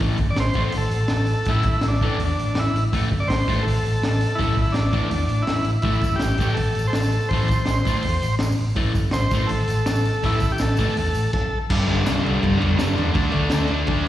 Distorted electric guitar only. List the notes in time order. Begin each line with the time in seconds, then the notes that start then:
0.01 A2 E3 A3
0.55 A2 E3 A3
1.48 A2 E3 A3
2.02 A2 E3 A3
2.93 A2 E3 A3
3.48 A2 E3 A3
4.38 A2 E3 A3
4.92 A2 E3 A3
5.84 A2 E3 A3
6.40 A2 E3 A3
7.32 A2 E3 A3
7.86 A2 E3 A3
8.76 A2 E3 A3
9.33 A2 E3 A3
10.23 A2 E3 A3
10.78 A2 E3 A3
11.71 G2 D3 G3
11.87 G2 D3 G3
12.05 G2 D3 G3
12.23 G2 D3 G3
12.40 G2 D3 G3
12.58 G2 D3 G3
12.77 G2 D3 G3
12.96 G2 D3 G3
13.12 D3 A3 D4
13.31 D3 A3 D4
13.51 D3 A3 D4
13.70 D3 A3 D4
13.87 D3 A3 D4